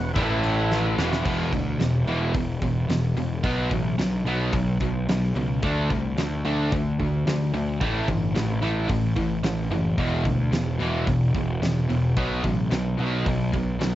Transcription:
Already playing: picked electric bass E1, distorted electric guitar E2 B2, tonewheel organ E3 B3 F#4
0.13 picked electric bass A1, distorted electric guitar A2 E3 A3, tonewheel organ A3 E4 B4, kick, open hi-hat
0.44 open hi-hat
0.71 snare
0.98 picked electric bass E1, distorted electric guitar E2 B2 E3, tonewheel organ E3 B3 F#4, snare
1.13 snare
1.25 picked electric bass E1, distorted electric guitar E2 B2 E3, kick, crash
1.52 picked electric bass D2, distorted electric guitar E2 B2, kick, open hi-hat
1.79 picked electric bass E1, distorted electric guitar E2 B2, snare, open hi-hat
2.06 picked electric bass E1, distorted electric guitar E2 B2 E3, open hi-hat
2.34 picked electric bass E1, distorted electric guitar E2 B2, kick, open hi-hat
2.62 picked electric bass E1, distorted electric guitar E2 B2, kick, open hi-hat
2.88 picked electric bass E1, distorted electric guitar E2 B2, snare, open hi-hat
3.16 picked electric bass E1, distorted electric guitar E2 B2, open hi-hat
3.44 picked electric bass B1, distorted electric guitar B2 F#3 B3, kick, open hi-hat
3.71 picked electric bass A1, distorted electric guitar B2 F#3, kick, open hi-hat
3.98 picked electric bass B1, distorted electric guitar B2 F#3, snare, open hi-hat
4.25 picked electric bass B1, distorted electric guitar B2 F#3 B3, open hi-hat
4.53 picked electric bass B1, distorted electric guitar B2 F#3, kick, open hi-hat
4.80 picked electric bass B1, distorted electric guitar B2 F#3, kick, open hi-hat
5.08 picked electric bass B1, distorted electric guitar B2 F#3, snare, open hi-hat
5.34 picked electric bass C#2, distorted electric guitar B2 F#3, open hi-hat
5.62 picked electric bass D2, distorted electric guitar D3 A3 D4, kick, open hi-hat
5.89 picked electric bass C2, distorted electric guitar D3 A3, kick, open hi-hat
6.17 picked electric bass D2, distorted electric guitar D3 A3, snare, open hi-hat
6.45 picked electric bass D2, distorted electric guitar D3 A3 D4, open hi-hat
6.72 picked electric bass D2, distorted electric guitar D3 A3, kick, open hi-hat
6.99 picked electric bass D2, distorted electric guitar D3 A3, kick, open hi-hat
7.26 picked electric bass D2, distorted electric guitar D3 A3, snare, open hi-hat
7.54 picked electric bass D2, distorted electric guitar D3 A3, open hi-hat
7.81 picked electric bass A1, distorted electric guitar A2 E3 A3, kick, open hi-hat
8.07 picked electric bass G1, distorted electric guitar A2 E3, kick, open hi-hat
8.34 picked electric bass A1, distorted electric guitar A2 E3, snare, open hi-hat
8.61 picked electric bass A1, distorted electric guitar A2 E3 A3, open hi-hat
8.89 picked electric bass A1, distorted electric guitar A2 E3, kick, open hi-hat
9.16 picked electric bass A1, distorted electric guitar A2 E3, kick, open hi-hat
9.43 picked electric bass A1, distorted electric guitar A2 E3, snare, open hi-hat
9.71 picked electric bass F#1, distorted electric guitar A2 E3, open hi-hat
9.98 picked electric bass E1, distorted electric guitar E2 B2 E3, kick, open hi-hat
10.25 picked electric bass D2, distorted electric guitar E2 B2, kick, open hi-hat
10.52 picked electric bass E1, distorted electric guitar E2 B2, snare, open hi-hat
10.79 picked electric bass E1, distorted electric guitar E2 B2 E3, open hi-hat
11.06 picked electric bass E1, distorted electric guitar E2 B2, kick, open hi-hat
11.34 picked electric bass E1, distorted electric guitar E2 B2, kick, open hi-hat
11.62 picked electric bass E1, distorted electric guitar E2 B2, snare, open hi-hat
11.89 picked electric bass E1, distorted electric guitar E2 B2, open hi-hat
12.17 picked electric bass B1, distorted electric guitar B2 F#3 B3, kick, open hi-hat
12.44 picked electric bass A1, distorted electric guitar B2 F#3, kick, open hi-hat
12.71 picked electric bass B1, distorted electric guitar B2 F#3, snare, open hi-hat
12.97 picked electric bass B1, distorted electric guitar B2 F#3 B3, open hi-hat
13.25 picked electric bass B1, distorted electric guitar B2 F#3, kick, open hi-hat
13.52 picked electric bass B1, distorted electric guitar B2 F#3, kick, open hi-hat
13.79 picked electric bass B1, distorted electric guitar B2 F#3, snare, open hi-hat

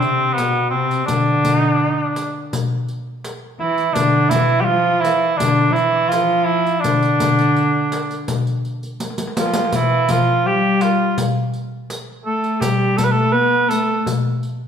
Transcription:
0.00 cello C3, cor anglais C4, riq
0.33 cor anglais B3
0.38 cello B2, riq, darbuka tek
0.70 cello C3, cor anglais C4
0.91 riq
1.06 cello D3, cor anglais D4, riq, darbuka dum
1.45 riq, darbuka dum
1.58 cor anglais D#4
1.72 cor anglais D4
1.82 darbuka ka
1.87 cor anglais D#4
2.01 cor anglais D4
2.16 riq
2.53 riq, darbuka dum
2.88 riq
3.25 riq, darbuka tek
3.60 cello E3, cor anglais E4
3.78 riq
3.93 cello D3, cor anglais D4, riq, darbuka dum
4.29 cello E3, cor anglais E4, riq, darbuka dum
4.51 darbuka ka
4.61 cello G3, cor anglais G4
4.65 cello F3, cor anglais F4
5.00 cello E3, cor anglais E4, darbuka tek
5.05 riq
5.37 cello D3, cor anglais D4, riq
5.41 darbuka dum
5.70 cello F3, cor anglais E4
5.76 cello E3, riq
6.09 cello F3, cor anglais F4, riq
6.13 darbuka tek
6.45 cor anglais E4
6.67 riq
6.80 cor anglais D4, riq
6.85 cello D3, darbuka dum
7.02 riq
7.20 riq, darbuka dum
7.38 riq
7.56 riq, darbuka ka
7.92 riq, darbuka tek
8.11 riq, darbuka ka
8.28 riq, darbuka dum
8.47 riq
8.65 riq
8.83 riq, darbuka ka
9.00 riq, darbuka tek
9.10 darbuka ka
9.18 riq, darbuka tek
9.27 darbuka ka
9.37 cello F3, cor anglais F4, riq, darbuka tek
9.46 darbuka ka
9.53 riq, darbuka tek
9.65 cello F3, darbuka ka
9.72 cello E3, cor anglais E4, riq, darbuka dum
10.09 cello F3, cor anglais F4, riq, darbuka dum
10.27 darbuka ka
10.45 cello G3, cor anglais G4, darbuka ka
10.81 cor anglais F4, riq, darbuka tek
11.18 riq, darbuka dum
11.54 riq
11.90 riq, darbuka tek
12.25 cello A3, cor anglais A4
12.44 riq
12.60 cello G3, cor anglais G4, riq, darbuka dum
12.97 cor anglais A4, riq, darbuka dum
13.04 cor anglais B4
13.11 cello A3, cor anglais A4
13.16 darbuka ka
13.32 cello B3, cor anglais B4, darbuka ka
13.69 cello A3, cor anglais A4, riq
14.06 riq, darbuka dum
14.43 riq

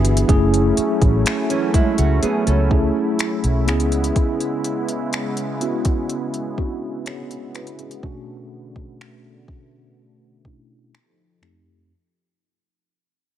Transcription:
Already playing: fingered electric bass G1, analog synth pad E3 B3 E4 G#4, tine electric piano B3 D4 F#4 G4 G#4
0.05 closed hi-hat
0.17 closed hi-hat
0.28 fingered electric bass F#1, analog synth pad F#3 A3 C#4, tine electric piano A3 C#4 E4 G#4, kick, closed hi-hat
0.54 closed hi-hat
0.77 muted fingered electric bass stroke, closed hi-hat
1.02 fingered electric bass A1, kick, closed hi-hat
1.26 finger snap, closed hi-hat
1.50 nylon-string guitar E3 C#4, closed hi-hat
1.74 nylon-string guitar G#3 E4, muted fingered electric bass stroke, kick, closed hi-hat
1.98 fingered electric bass C#2, nylon-string guitar A3 F#4, closed hi-hat
2.23 nylon-string guitar B3 G#4, closed hi-hat
2.47 fingered electric bass C#2, nylon-string guitar C#4 A4, closed hi-hat
2.70 tine electric piano A3 C#4 E4 G#4, kick
3.19 finger snap, closed hi-hat
3.44 fingered electric bass B1, closed hi-hat
3.67 fingered electric bass C#2, analog synth pad C#3 G#3 B3, tine electric piano B3 C#4 E4 G#4, finger snap, closed hi-hat
3.80 closed hi-hat
3.92 closed hi-hat
4.04 closed hi-hat
4.16 kick, closed hi-hat
4.40 closed hi-hat
4.64 closed hi-hat
4.88 closed hi-hat
5.13 finger snap, closed hi-hat
5.37 closed hi-hat
5.61 tine electric piano B3 C#4 E4 F#4, closed hi-hat
5.85 kick, closed hi-hat
6.09 closed hi-hat
6.34 closed hi-hat
6.57 tine electric piano B3 C#4 D4 F#4, kick
6.65 tine electric piano E4
7.06 tine electric piano G#4 C#5, finger snap, closed hi-hat
7.31 closed hi-hat
7.55 tine electric piano F#4 B4, finger snap, closed hi-hat
7.67 closed hi-hat
7.79 tine electric piano C#4 G#4, closed hi-hat
7.91 closed hi-hat
8.02 tine electric piano B2 A3 C#4 D4 F#4, analog synth pad D3 A3, kick
8.76 kick
9.01 finger snap
9.48 kick
10.44 tine electric piano B2 A3 C#4 D4 E4, kick
10.94 analog synth pad F3 D#4 G4 A4, finger snap
11.41 tine electric piano F2 A3 C4 D#4 G4, finger snap

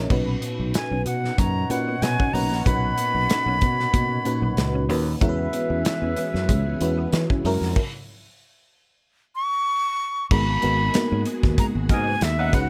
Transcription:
Already playing: fm electric piano A#3 C#4 E4 F#4 G#4 A#4 C#5 D#5 E5
0.10 fingered electric bass B1, fm electric piano A#2 C#4 D#4 F#4 B4, clean electric guitar B3, kick, crash
0.27 muted clean electric guitar stroke
0.41 clean electric guitar B3, closed hi-hat
0.59 fingered electric bass B1
0.74 flute G#5, muted clean electric guitar stroke, snare, closed hi-hat
0.91 fingered electric bass B1, clean electric guitar C#4
1.06 fingered electric bass B2, clean electric guitar B3, flute F#5, closed hi-hat
1.25 snare
1.38 fingered electric bass F#2, clean electric guitar A#3, horn section D#4 C#5 F#5, flute A#5, kick, closed hi-hat
1.70 fm electric piano A#2 C#4 D#4 F#4 B4, fingered electric bass A#2, flute F#5, muted clean electric guitar stroke, closed hi-hat
1.88 clean electric guitar B3
2.02 fingered electric bass B2, flute G#5, muted clean electric guitar stroke, snare, closed hi-hat
2.19 clean electric guitar C#4, kick
2.33 fingered electric bass B1, fm electric piano A#3 C#4 D#4 F#4 B4, clean electric guitar D#4, flute A#5, open hi-hat
2.51 fingered electric bass A#1, snare
2.66 fingered electric bass B1, fm electric piano A#2 C#4 D#4 F#4 A#4, clean electric guitar B3, flute B5, kick, closed hi-hat
2.74 fm electric piano B4
2.83 muted clean electric guitar stroke
2.98 clean electric guitar B3, closed hi-hat
3.15 fingered electric bass B1
3.30 snare, closed hi-hat
3.46 fingered electric bass B1, clean electric guitar C#4
3.61 fingered electric bass B2, clean electric guitar B3, kick, closed hi-hat
3.80 snare
3.93 fingered electric bass B2, clean electric guitar A#3, kick, closed hi-hat
4.25 fm electric piano A#2 C#4 D#4 F#4 B4, muted clean electric guitar stroke, closed hi-hat
4.42 fingered electric bass B1, clean electric guitar B3
4.57 fingered electric bass C#2, muted clean electric guitar stroke, snare, closed hi-hat
4.74 clean electric guitar C#4
4.89 fingered electric bass D#2, fm electric piano A#3 C#4 D#4 F#4 B4, clean electric guitar D#4, open hi-hat
5.21 fingered electric bass E2, string machine E3 B3 C#4 G#4, fm electric piano G#3 C#4 E4 F#4 A#4, horn section C#4 B4 E5, clean electric guitar E4, kick, closed hi-hat
5.29 fm electric piano B4
5.38 muted clean electric guitar stroke
5.53 clean electric guitar B3, closed hi-hat
5.70 fingered electric bass E2
5.85 snare, closed hi-hat
6.02 fingered electric bass E2, clean electric guitar C#4
6.16 clean electric guitar B3, closed hi-hat
6.34 fingered electric bass F#2, snare
6.49 fingered electric bass C#2, clean electric guitar G#3, kick, closed hi-hat
6.81 fingered electric bass E2, fm electric piano G#3 C#4 E4 F#4 B4, muted clean electric guitar stroke, closed hi-hat
6.98 clean electric guitar B3
7.12 fingered electric bass E3, muted clean electric guitar stroke, snare, closed hi-hat
7.30 clean electric guitar C#4, kick
7.44 fingered electric bass F#2, string machine F#3 E4 A#4, fm electric piano G#3 C#4 E4 F#4 A#4, clean electric guitar D#4, open hi-hat
7.61 fingered electric bass F2, snare
7.76 kick, crash
9.36 flute C#6
10.31 fingered electric bass G#1, fm electric piano G#3 B3 D#4 F#4 A#4, clean electric guitar G#3, string machine G#3 F#4 G#4, flute B5, kick, crash
10.48 muted clean electric guitar stroke
10.62 fingered electric bass G#1, fm electric piano G#3 B3 D#4 F#4 A#4, clean electric guitar B3, closed hi-hat
10.94 fm electric piano G#3 A#3 B3 D#4 F#4, snare, closed hi-hat
11.12 fingered electric bass G#2, clean electric guitar C#4
11.25 clean electric guitar B3, closed hi-hat
11.43 fingered electric bass D#2, kick, snare
11.58 clean electric guitar G#3, flute A#5, kick, closed hi-hat
11.75 fingered electric bass G#1
11.89 fingered electric bass G#2, horn section B3 A#4 D#5, flute G#5, muted clean electric guitar stroke, kick, closed hi-hat
12.07 clean electric guitar B3
12.21 fingered electric bass D#2, flute E5, snare, closed hi-hat
12.39 clean electric guitar C#4, horn section D#4 B4 F#5
12.53 fingered electric bass C#2, string machine C#3 B3 D#4, fm electric piano G#3 C#4 D#4 F#4 B4, clean electric guitar D#4, flute F#5, kick, closed hi-hat

